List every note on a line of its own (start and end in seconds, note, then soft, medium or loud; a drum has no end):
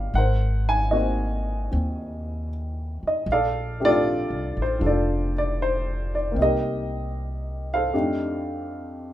0.00 0.11 G3 soft
0.00 0.12 C4 soft
0.00 0.12 D4 soft
0.00 0.14 F4 soft
0.00 0.14 G4 soft
0.00 0.15 A#4 medium
0.00 0.15 D5 medium
0.00 0.15 F5 medium
0.00 0.15 G5 medium
0.14 1.67 G#1 medium
0.14 1.69 A#4 medium
0.14 0.64 F#5 medium
0.18 0.96 C5 medium
0.69 0.93 G#5 medium
0.91 3.26 A#3 soft
0.91 1.69 C4 soft
0.91 3.27 D#4 soft
0.91 0.95 F#4 medium
0.91 1.66 D#5 medium
0.97 2.47 F#4 soft
0.97 2.47 C5 soft
1.71 2.99 D#2 medium
1.71 3.26 C4 soft
3.03 muted upright bass stroke soft
3.07 3.30 D#5 medium
3.26 4.26 A#1 medium
3.32 3.84 A4 medium
3.32 3.83 D5 medium
3.32 3.79 F5 medium
3.80 6.37 A3 soft
3.80 6.33 C4 soft
3.80 4.77 D4 soft
3.80 6.38 G4 soft
3.85 4.79 F4 medium
3.85 4.80 A4 medium
3.85 4.62 D5 loud
4.30 4.54 C2 medium
4.57 4.80 A1 medium
4.62 4.85 C5 medium
4.79 6.33 F1 medium
4.79 6.35 D4 soft
4.79 4.86 F4 soft
4.79 4.86 A4 soft
4.86 6.36 F4 soft
4.86 6.36 A4 medium
4.86 5.34 D5 medium
5.38 5.59 D5 medium
5.62 6.16 C5 medium
6.15 6.39 D5 medium
6.32 7.91 A#3 soft
6.32 7.93 C4 soft
6.36 7.89 C2 medium
6.36 7.93 D#4 soft
6.42 7.92 G4 soft
6.42 7.93 A#4 medium
6.42 7.68 D#5 medium
7.74 9.13 A4 soft
7.74 9.13 C5 soft
7.74 9.13 F5 medium
7.94 9.13 F2 soft
7.94 9.13 A3 soft
7.94 9.13 D4 soft
7.94 9.13 D#4 soft
7.94 9.13 G4 soft